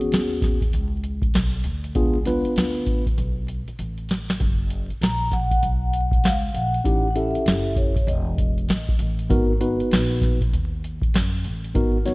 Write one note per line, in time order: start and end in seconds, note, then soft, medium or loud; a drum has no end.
0.00 0.58 B3 medium
0.00 0.59 C#4 medium
0.00 0.59 F#4 medium
0.00 0.59 G#4 medium
0.00 muted upright bass stroke soft
0.00 closed hi-hat soft
0.12 0.70 D#2 medium
0.12 snare loud
0.12 closed hi-hat medium
0.42 kick medium
0.42 snare soft
0.42 closed hi-hat medium
0.61 kick medium
0.61 closed hi-hat soft
0.73 1.32 C#2 medium
0.73 closed hi-hat medium
1.04 closed hi-hat medium
1.22 kick medium
1.22 closed hi-hat soft
1.34 1.64 B1 medium
1.34 snare medium
1.34 closed hi-hat medium
1.64 1.94 D2 medium
1.64 closed hi-hat medium
1.84 closed hi-hat medium
1.95 2.43 C#2 medium
1.95 2.17 B3 medium
1.95 2.17 D4 medium
1.95 2.17 F4 medium
1.95 2.17 G#4 medium
1.95 kick loud
1.95 closed hi-hat medium
2.25 3.03 B3 medium
2.25 3.03 D4 medium
2.25 3.04 F4 medium
2.25 3.04 B4 medium
2.25 snare soft
2.25 closed hi-hat medium
2.45 muted upright bass stroke soft
2.45 closed hi-hat soft
2.56 3.15 D2 medium
2.56 snare loud
2.56 closed hi-hat medium
2.75 closed hi-hat soft
2.86 kick medium
2.86 closed hi-hat medium
3.06 kick medium
3.06 closed hi-hat medium
3.18 3.65 B1 medium
3.18 closed hi-hat medium
3.48 closed hi-hat medium
3.68 muted upright bass stroke soft
3.68 closed hi-hat soft
3.79 4.37 A1 medium
3.79 closed hi-hat medium
3.98 closed hi-hat soft
4.09 snare medium
4.09 closed hi-hat medium
4.29 snare medium
4.29 closed hi-hat medium
4.40 4.87 F#1 medium
4.40 kick loud
4.40 closed hi-hat medium
4.70 closed hi-hat medium
4.89 muted upright bass stroke soft
4.89 closed hi-hat soft
5.01 5.60 A#1 medium
5.01 5.34 A#5 medium
5.01 snare loud
5.01 closed hi-hat medium
5.31 6.27 F#5 medium
5.31 kick medium
5.31 snare soft
5.31 closed hi-hat medium
5.51 kick medium
5.51 closed hi-hat medium
5.63 6.21 B1 medium
5.63 closed hi-hat medium
5.93 closed hi-hat medium
6.11 kick medium
6.11 closed hi-hat soft
6.24 6.53 C#2 medium
6.24 6.56 F5 medium
6.24 snare medium
6.24 closed hi-hat medium
6.54 6.84 A#1 medium
6.54 7.09 F#5 medium
6.54 closed hi-hat medium
6.74 closed hi-hat medium
6.84 7.32 A1 medium
6.84 7.06 C#4 medium
6.84 7.07 D#4 medium
6.84 7.07 E4 medium
6.84 7.07 G4 medium
6.84 kick medium
6.84 closed hi-hat medium
7.11 7.16 F#5 medium
7.15 7.93 C#4 medium
7.15 7.93 E4 medium
7.15 7.93 G4 medium
7.15 7.93 A4 medium
7.15 7.73 E5 medium
7.15 closed hi-hat medium
7.35 muted upright bass stroke soft
7.35 closed hi-hat soft
7.46 8.05 F#1 medium
7.46 snare loud
7.46 closed hi-hat medium
7.76 8.09 C#5 medium
7.76 kick medium
7.76 closed hi-hat medium
7.96 kick medium
7.96 closed hi-hat medium
8.07 8.66 E1 medium
8.07 8.96 D#5 medium
8.07 closed hi-hat medium
8.38 kick medium
8.38 closed hi-hat medium
8.58 closed hi-hat soft
8.68 8.98 A1 medium
8.68 snare medium
8.68 closed hi-hat medium
8.88 kick medium
8.99 9.28 A1 medium
8.99 closed hi-hat medium
9.19 closed hi-hat medium
9.30 9.77 G#1 loud
9.30 9.51 B3 medium
9.30 9.52 D#4 medium
9.30 9.52 F#4 medium
9.30 9.52 A#4 loud
9.30 kick loud
9.30 closed hi-hat medium
9.60 10.38 B3 medium
9.60 10.38 D#4 medium
9.60 10.38 F#4 medium
9.60 10.38 B4 medium
9.60 closed hi-hat medium
9.80 muted upright bass stroke soft
9.80 closed hi-hat soft
9.91 10.50 A#1 medium
9.91 snare loud
9.91 closed hi-hat medium
10.21 kick medium
10.21 snare soft
10.21 closed hi-hat medium
10.41 kick medium
10.41 closed hi-hat medium
10.53 11.11 D#2 medium
10.53 closed hi-hat medium
10.84 closed hi-hat medium
11.02 kick medium
11.02 closed hi-hat soft
11.14 11.43 F#2 medium
11.14 snare medium
11.14 closed hi-hat medium
11.44 11.74 A1 medium
11.44 closed hi-hat medium
11.64 closed hi-hat medium
11.74 12.14 G#1 medium
11.74 11.96 B3 medium
11.74 11.96 D#4 medium
11.74 11.97 F#4 medium
11.74 11.97 A#4 medium
11.74 kick medium
11.74 closed hi-hat medium
12.05 12.14 B3 medium
12.05 12.14 D#4 medium
12.05 12.14 F#4 medium
12.05 12.14 C#5 medium
12.05 snare soft
12.05 closed hi-hat medium